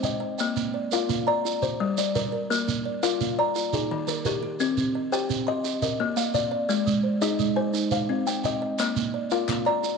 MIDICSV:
0, 0, Header, 1, 5, 480
1, 0, Start_track
1, 0, Tempo, 349650
1, 548, Time_signature, 12, 3, 24, 8
1, 13695, End_track
2, 0, Start_track
2, 0, Title_t, "Kalimba"
2, 0, Program_c, 0, 108
2, 0, Note_on_c, 0, 72, 66
2, 65, Note_on_c, 0, 75, 74
2, 543, Note_off_c, 0, 72, 0
2, 547, Note_off_c, 0, 75, 0
2, 552, Note_on_c, 0, 58, 82
2, 1032, Note_off_c, 0, 58, 0
2, 1277, Note_on_c, 0, 77, 69
2, 1279, Note_on_c, 0, 65, 78
2, 1752, Note_on_c, 0, 74, 82
2, 1756, Note_off_c, 0, 65, 0
2, 1993, Note_off_c, 0, 74, 0
2, 1996, Note_off_c, 0, 77, 0
2, 2231, Note_on_c, 0, 72, 63
2, 2475, Note_on_c, 0, 55, 86
2, 2720, Note_on_c, 0, 74, 64
2, 2953, Note_off_c, 0, 72, 0
2, 2955, Note_off_c, 0, 55, 0
2, 2958, Note_on_c, 0, 70, 76
2, 3437, Note_off_c, 0, 70, 0
2, 3437, Note_on_c, 0, 58, 87
2, 3438, Note_off_c, 0, 74, 0
2, 3916, Note_off_c, 0, 58, 0
2, 4159, Note_on_c, 0, 65, 89
2, 4159, Note_on_c, 0, 77, 72
2, 4638, Note_off_c, 0, 65, 0
2, 4649, Note_on_c, 0, 74, 77
2, 4878, Note_off_c, 0, 77, 0
2, 4882, Note_off_c, 0, 74, 0
2, 5134, Note_on_c, 0, 68, 65
2, 5372, Note_on_c, 0, 51, 82
2, 5607, Note_on_c, 0, 70, 66
2, 5844, Note_off_c, 0, 51, 0
2, 5844, Note_off_c, 0, 68, 0
2, 5849, Note_on_c, 0, 67, 81
2, 6318, Note_on_c, 0, 60, 87
2, 6321, Note_off_c, 0, 70, 0
2, 6322, Note_off_c, 0, 67, 0
2, 6796, Note_off_c, 0, 60, 0
2, 7035, Note_on_c, 0, 67, 84
2, 7035, Note_on_c, 0, 79, 70
2, 7514, Note_off_c, 0, 67, 0
2, 7525, Note_on_c, 0, 75, 84
2, 7754, Note_off_c, 0, 79, 0
2, 7759, Note_off_c, 0, 75, 0
2, 7996, Note_on_c, 0, 75, 63
2, 8236, Note_on_c, 0, 58, 83
2, 8471, Note_on_c, 0, 77, 63
2, 8710, Note_on_c, 0, 74, 75
2, 8714, Note_off_c, 0, 58, 0
2, 8714, Note_off_c, 0, 75, 0
2, 9184, Note_on_c, 0, 56, 83
2, 9190, Note_off_c, 0, 74, 0
2, 9191, Note_off_c, 0, 77, 0
2, 9667, Note_off_c, 0, 56, 0
2, 9909, Note_on_c, 0, 63, 87
2, 9910, Note_on_c, 0, 75, 75
2, 10386, Note_on_c, 0, 72, 71
2, 10389, Note_off_c, 0, 63, 0
2, 10628, Note_off_c, 0, 72, 0
2, 10629, Note_off_c, 0, 75, 0
2, 10873, Note_on_c, 0, 77, 62
2, 11109, Note_on_c, 0, 60, 73
2, 11353, Note_on_c, 0, 79, 67
2, 11588, Note_off_c, 0, 60, 0
2, 11590, Note_off_c, 0, 77, 0
2, 11605, Note_on_c, 0, 75, 80
2, 12070, Note_off_c, 0, 79, 0
2, 12074, Note_on_c, 0, 58, 88
2, 12076, Note_off_c, 0, 75, 0
2, 12550, Note_off_c, 0, 58, 0
2, 12789, Note_on_c, 0, 65, 84
2, 12790, Note_on_c, 0, 77, 67
2, 13267, Note_off_c, 0, 65, 0
2, 13267, Note_on_c, 0, 74, 83
2, 13506, Note_off_c, 0, 74, 0
2, 13508, Note_off_c, 0, 77, 0
2, 13695, End_track
3, 0, Start_track
3, 0, Title_t, "Kalimba"
3, 0, Program_c, 1, 108
3, 0, Note_on_c, 1, 60, 64
3, 40, Note_on_c, 1, 79, 61
3, 277, Note_on_c, 1, 75, 75
3, 298, Note_off_c, 1, 60, 0
3, 512, Note_off_c, 1, 79, 0
3, 528, Note_on_c, 1, 79, 65
3, 774, Note_off_c, 1, 75, 0
3, 778, Note_on_c, 1, 58, 81
3, 1016, Note_on_c, 1, 74, 66
3, 1019, Note_off_c, 1, 79, 0
3, 1262, Note_on_c, 1, 70, 66
3, 1265, Note_off_c, 1, 58, 0
3, 1497, Note_on_c, 1, 58, 82
3, 1741, Note_on_c, 1, 82, 69
3, 1745, Note_off_c, 1, 74, 0
3, 1985, Note_off_c, 1, 58, 0
3, 1988, Note_off_c, 1, 70, 0
3, 1991, Note_on_c, 1, 65, 79
3, 2230, Note_on_c, 1, 67, 65
3, 2232, Note_off_c, 1, 65, 0
3, 2468, Note_off_c, 1, 82, 0
3, 2720, Note_on_c, 1, 74, 61
3, 2721, Note_on_c, 1, 55, 78
3, 2938, Note_off_c, 1, 74, 0
3, 2953, Note_off_c, 1, 67, 0
3, 2954, Note_on_c, 1, 74, 69
3, 3190, Note_on_c, 1, 70, 75
3, 3198, Note_off_c, 1, 55, 0
3, 3422, Note_off_c, 1, 70, 0
3, 3438, Note_on_c, 1, 70, 72
3, 3672, Note_on_c, 1, 58, 76
3, 3675, Note_off_c, 1, 74, 0
3, 3917, Note_off_c, 1, 70, 0
3, 3917, Note_on_c, 1, 74, 67
3, 4154, Note_off_c, 1, 58, 0
3, 4163, Note_on_c, 1, 70, 69
3, 4408, Note_on_c, 1, 58, 79
3, 4637, Note_off_c, 1, 74, 0
3, 4656, Note_on_c, 1, 82, 66
3, 4879, Note_off_c, 1, 70, 0
3, 4882, Note_off_c, 1, 58, 0
3, 4884, Note_on_c, 1, 65, 73
3, 5120, Note_off_c, 1, 65, 0
3, 5122, Note_on_c, 1, 63, 68
3, 5366, Note_off_c, 1, 82, 0
3, 5593, Note_on_c, 1, 51, 74
3, 5593, Note_on_c, 1, 70, 64
3, 5818, Note_off_c, 1, 70, 0
3, 5834, Note_on_c, 1, 70, 71
3, 5839, Note_off_c, 1, 63, 0
3, 6074, Note_off_c, 1, 51, 0
3, 6077, Note_on_c, 1, 67, 88
3, 6309, Note_off_c, 1, 67, 0
3, 6326, Note_on_c, 1, 67, 71
3, 6554, Note_off_c, 1, 70, 0
3, 6561, Note_on_c, 1, 60, 86
3, 6799, Note_on_c, 1, 75, 66
3, 6800, Note_off_c, 1, 67, 0
3, 7031, Note_on_c, 1, 72, 62
3, 7038, Note_off_c, 1, 60, 0
3, 7267, Note_on_c, 1, 60, 90
3, 7506, Note_on_c, 1, 84, 67
3, 7516, Note_off_c, 1, 75, 0
3, 7748, Note_on_c, 1, 67, 72
3, 7750, Note_off_c, 1, 60, 0
3, 7752, Note_off_c, 1, 72, 0
3, 7991, Note_off_c, 1, 67, 0
3, 7995, Note_on_c, 1, 70, 73
3, 8229, Note_off_c, 1, 84, 0
3, 8462, Note_on_c, 1, 58, 80
3, 8463, Note_on_c, 1, 77, 62
3, 8693, Note_off_c, 1, 77, 0
3, 8710, Note_on_c, 1, 77, 65
3, 8713, Note_off_c, 1, 70, 0
3, 8943, Note_on_c, 1, 74, 81
3, 8947, Note_off_c, 1, 58, 0
3, 9165, Note_off_c, 1, 74, 0
3, 9181, Note_on_c, 1, 74, 60
3, 9417, Note_on_c, 1, 56, 80
3, 9430, Note_off_c, 1, 77, 0
3, 9657, Note_on_c, 1, 72, 58
3, 9666, Note_off_c, 1, 74, 0
3, 9902, Note_on_c, 1, 68, 66
3, 9904, Note_off_c, 1, 56, 0
3, 10143, Note_on_c, 1, 56, 83
3, 10381, Note_on_c, 1, 80, 72
3, 10383, Note_off_c, 1, 72, 0
3, 10616, Note_on_c, 1, 63, 78
3, 10625, Note_off_c, 1, 68, 0
3, 10626, Note_off_c, 1, 56, 0
3, 10863, Note_off_c, 1, 63, 0
3, 10863, Note_on_c, 1, 72, 73
3, 11104, Note_off_c, 1, 80, 0
3, 11350, Note_on_c, 1, 60, 70
3, 11351, Note_on_c, 1, 79, 59
3, 11571, Note_off_c, 1, 79, 0
3, 11585, Note_off_c, 1, 72, 0
3, 11587, Note_on_c, 1, 79, 64
3, 11829, Note_off_c, 1, 60, 0
3, 11834, Note_on_c, 1, 75, 79
3, 12062, Note_off_c, 1, 75, 0
3, 12079, Note_on_c, 1, 75, 68
3, 12307, Note_off_c, 1, 79, 0
3, 12318, Note_on_c, 1, 58, 81
3, 12547, Note_on_c, 1, 74, 64
3, 12553, Note_off_c, 1, 75, 0
3, 12792, Note_off_c, 1, 58, 0
3, 12795, Note_on_c, 1, 70, 66
3, 13028, Note_on_c, 1, 58, 83
3, 13262, Note_on_c, 1, 82, 67
3, 13266, Note_off_c, 1, 74, 0
3, 13500, Note_on_c, 1, 65, 65
3, 13507, Note_off_c, 1, 58, 0
3, 13510, Note_off_c, 1, 70, 0
3, 13695, Note_off_c, 1, 65, 0
3, 13695, Note_off_c, 1, 82, 0
3, 13695, End_track
4, 0, Start_track
4, 0, Title_t, "Shekere"
4, 46, Note_on_c, 9, 82, 77
4, 184, Note_off_c, 9, 82, 0
4, 532, Note_on_c, 9, 82, 60
4, 669, Note_off_c, 9, 82, 0
4, 775, Note_on_c, 9, 82, 64
4, 913, Note_off_c, 9, 82, 0
4, 1259, Note_on_c, 9, 82, 55
4, 1396, Note_off_c, 9, 82, 0
4, 1504, Note_on_c, 9, 82, 78
4, 1641, Note_off_c, 9, 82, 0
4, 2001, Note_on_c, 9, 82, 58
4, 2138, Note_off_c, 9, 82, 0
4, 2228, Note_on_c, 9, 82, 65
4, 2366, Note_off_c, 9, 82, 0
4, 2712, Note_on_c, 9, 82, 68
4, 2849, Note_off_c, 9, 82, 0
4, 2958, Note_on_c, 9, 82, 78
4, 3095, Note_off_c, 9, 82, 0
4, 3452, Note_on_c, 9, 82, 73
4, 3589, Note_off_c, 9, 82, 0
4, 3684, Note_on_c, 9, 82, 75
4, 3821, Note_off_c, 9, 82, 0
4, 4161, Note_on_c, 9, 82, 63
4, 4298, Note_off_c, 9, 82, 0
4, 4403, Note_on_c, 9, 82, 76
4, 4540, Note_off_c, 9, 82, 0
4, 4878, Note_on_c, 9, 82, 53
4, 5016, Note_off_c, 9, 82, 0
4, 5120, Note_on_c, 9, 82, 72
4, 5257, Note_off_c, 9, 82, 0
4, 5598, Note_on_c, 9, 82, 67
4, 5735, Note_off_c, 9, 82, 0
4, 5836, Note_on_c, 9, 82, 68
4, 5974, Note_off_c, 9, 82, 0
4, 6315, Note_on_c, 9, 82, 59
4, 6453, Note_off_c, 9, 82, 0
4, 6553, Note_on_c, 9, 82, 70
4, 6690, Note_off_c, 9, 82, 0
4, 7039, Note_on_c, 9, 82, 58
4, 7176, Note_off_c, 9, 82, 0
4, 7277, Note_on_c, 9, 82, 73
4, 7415, Note_off_c, 9, 82, 0
4, 7751, Note_on_c, 9, 82, 56
4, 7888, Note_off_c, 9, 82, 0
4, 7991, Note_on_c, 9, 82, 70
4, 8129, Note_off_c, 9, 82, 0
4, 8469, Note_on_c, 9, 82, 68
4, 8606, Note_off_c, 9, 82, 0
4, 8707, Note_on_c, 9, 82, 81
4, 8844, Note_off_c, 9, 82, 0
4, 9190, Note_on_c, 9, 82, 65
4, 9328, Note_off_c, 9, 82, 0
4, 9432, Note_on_c, 9, 82, 69
4, 9569, Note_off_c, 9, 82, 0
4, 9909, Note_on_c, 9, 82, 62
4, 10047, Note_off_c, 9, 82, 0
4, 10149, Note_on_c, 9, 82, 75
4, 10286, Note_off_c, 9, 82, 0
4, 10627, Note_on_c, 9, 82, 56
4, 10764, Note_off_c, 9, 82, 0
4, 10862, Note_on_c, 9, 82, 72
4, 10999, Note_off_c, 9, 82, 0
4, 11355, Note_on_c, 9, 82, 60
4, 11492, Note_off_c, 9, 82, 0
4, 11589, Note_on_c, 9, 82, 64
4, 11726, Note_off_c, 9, 82, 0
4, 12064, Note_on_c, 9, 82, 64
4, 12201, Note_off_c, 9, 82, 0
4, 12305, Note_on_c, 9, 82, 74
4, 12442, Note_off_c, 9, 82, 0
4, 12775, Note_on_c, 9, 82, 54
4, 12912, Note_off_c, 9, 82, 0
4, 13022, Note_on_c, 9, 82, 76
4, 13160, Note_off_c, 9, 82, 0
4, 13502, Note_on_c, 9, 82, 52
4, 13640, Note_off_c, 9, 82, 0
4, 13695, End_track
5, 0, Start_track
5, 0, Title_t, "Drums"
5, 12076, Note_on_c, 9, 39, 60
5, 12213, Note_off_c, 9, 39, 0
5, 13026, Note_on_c, 9, 39, 55
5, 13163, Note_off_c, 9, 39, 0
5, 13264, Note_on_c, 9, 39, 18
5, 13401, Note_off_c, 9, 39, 0
5, 13695, End_track
0, 0, End_of_file